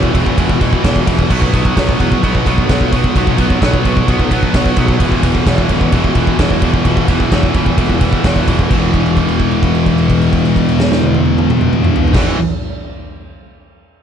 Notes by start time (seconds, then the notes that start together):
Already playing: E2 B2 E3 B3
0.03 kick
0.14 E1 E2 B2 E3, kick, ride
0.26 kick
0.37 E1 E2 B2 E3, kick, ride
0.49 kick
0.60 E2 B2 E3, kick, ride
0.73 kick
0.83 E1 E2 B2 E3, kick, snare, ride
0.96 kick
1.06 E1 E2 B2 E3, kick, ride
1.19 kick
1.29 B1 B2 F#3 B3, kick, crash
1.42 kick
1.52 B1 B2 F#3 B3, kick, ride
1.65 kick
1.76 B1 B2 F#3 B3, kick, snare, ride
1.89 kick
2.00 E2 B2 F#3 B3, kick, ride
2.12 kick
2.23 B1 B2 F#3 B3, kick, ride
2.35 kick
2.46 B1 B2 F#3 B3, kick, ride
2.58 kick
2.69 B1 B2 F#3 B3, kick, snare, ride
2.81 kick
2.92 B2 F#3 B3, kick, ride
3.04 kick
3.15 B1 B2 F#3 B3, kick, ride
3.27 kick
3.38 B1 B2 F#3 B3, kick, ride
3.50 kick
3.61 B1 B2 F#3 B3, kick, snare, ride
3.74 kick
3.84 B1 B2 F#3 B3, kick, ride
3.97 kick
4.08 B1 B2 F#3 B3, kick, ride
4.20 kick
4.31 B2 F#3 B3, kick, ride
4.43 kick
4.54 B1 B2 F#3 B3, kick, snare, ride
4.66 kick
4.76 B1 B2 F#3 B3, kick, ride
4.88 kick
5.00 E1 E2 B2 E3, kick, ride
5.12 kick
5.23 E1 E2 B2 E3, kick, ride
5.35 kick
5.46 E1 E2 B2 E3, kick, snare, ride
5.58 kick
5.69 A1 E2 B2 E3, kick, ride
5.81 kick
5.92 E1 E2 B2 E3, kick, ride
6.04 kick
6.15 E1 E2 B2 E3, kick, ride
6.27 kick
6.39 E1 E2 B2 E3, kick, snare, ride
6.51 kick
6.62 E2 B2 E3, kick, ride
6.74 kick
6.85 E1 E2 B2 E3, kick, ride
6.97 kick
7.08 E1 E2 B2 E3, kick, ride
7.20 kick
7.31 E1 E2 B2 E3, kick, snare, ride
7.43 kick
7.54 E1 E2 B2 E3, kick, ride
7.66 kick
7.77 E1 E2 B2 E3, kick, ride
7.90 kick
8.01 E2 B2 E3, kick, ride
8.13 kick
8.24 E1 E2 B2 E3, kick, snare, ride
8.36 kick
8.48 E1 E2 B2 E3, kick, ride
8.59 kick
8.70 E1 E2 B2, kick, crash
8.74 E3
8.94 kick, crash
9.06 crash
9.17 kick, crash
9.28 crash
9.39 kick, crash
9.51 crash
9.63 kick, crash
9.75 crash
9.86 kick, crash
9.98 crash
10.10 kick, crash
10.21 crash
10.33 kick, crash
10.45 crash
10.56 kick, crash
10.68 crash
10.80 snare
10.92 snare
11.03 high tom
11.14 high tom
11.26 high tom
11.38 mid tom
11.50 mid tom
11.61 mid tom
11.73 mid tom
11.84 mid tom
11.96 floor tom
12.08 floor tom
12.13 E1 E2 B2, kick, snare, crash
12.18 E3